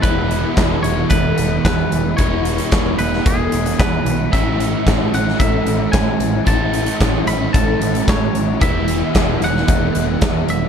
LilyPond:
<<
  \new Staff \with { instrumentName = "Clean electric guitar" } { \time 4/4 \key e \major \tempo 4 = 112 b'4. cis''8 b'4 b'4 | cis''4. b'8 gis'4 b'4 | e''4. fis''8 e''4 gis''4 | a''4. b''8 a''4 cis''4 |
e''4. fis''2 e''8 | }
  \new Staff \with { instrumentName = "Twelve-string acoustic guitar" } { \time 4/4 \key e \major e'4 gis'4 a'8 b'4 e'8 | e'4 gis'4 a'8 b'4 e'8 | e'4 gis'4 a'8 b'4 e'8 | e'4 gis'4 a'8 b'4 e'8 |
e'4 gis'4 a'8 b'4 e'8 | }
  \new Staff \with { instrumentName = "Overdriven electric guitar" } { \time 4/4 \key e \major <e gis b e'>4. <e gis b e'>2~ <e gis b e'>8 | <e gis b e'>4. <e gis b e'>2~ <e gis b e'>8 | <a, e a cis' e'>4. <a, e a cis' e'>2~ <a, e a cis' e'>8 | <a, e a cis' e'>4. <a, e a cis' e'>2~ <a, e a cis' e'>8 |
<e gis b e'>4. <e gis b e'>2~ <e gis b e'>8 | }
  \new Staff \with { instrumentName = "Overdriven electric guitar" } { \clef bass \time 4/4 \key e \major <e, b, e gis b e'>1 | <e, b, e gis b e'>1 | <a, e a cis' e'>1 | <a, e a cis' e'>1 |
<e, b, e gis b e'>1 | }
  \new Staff \with { instrumentName = "Picked electric bass" } { \clef bass \time 4/4 \key e \major e,,4 e,,8 e,,8 e,,8 e,,8 e,8 e,,8 | e,,4 e,,8 e,,8 e,,8 e,,8 e,8 b,,8 | a,,4 a,,8 a,,8 a,,8 a,,8 a,8 a,,8 | a,,4 a,,8 a,,8 a,,8 a,,8 a,8 a,,8 |
e,,4 e,,8 e,,8 e,,8 e,,8 e,8 e,,8 | }
  \new DrumStaff \with { instrumentName = "Drums" } \drummode { \time 4/4 <hh bd>8 hh8 <hh bd sn>8 hh8 <hh bd>8 hh8 <hh bd sn>8 hh8 | <hh bd>8 hh16 hh16 <hh bd sn>8 hh16 sn16 <hh bd>8 hh16 hh16 <hh bd sn>8 hh8 | <hh bd>8 hh8 <hh bd sn>8 hh16 sn16 <hh bd>8 hh8 <hh bd sn>8 hh8 | <hh bd>8 hh16 hh16 <hh bd sn>8 hh8 <hh bd>8 hh16 hh16 <hh bd sn>8 hh8 |
<hh bd>8 hh8 <hh bd sn>8 hh16 sn16 <hh bd>8 hh8 <hh bd sn>8 hh8 | }
>>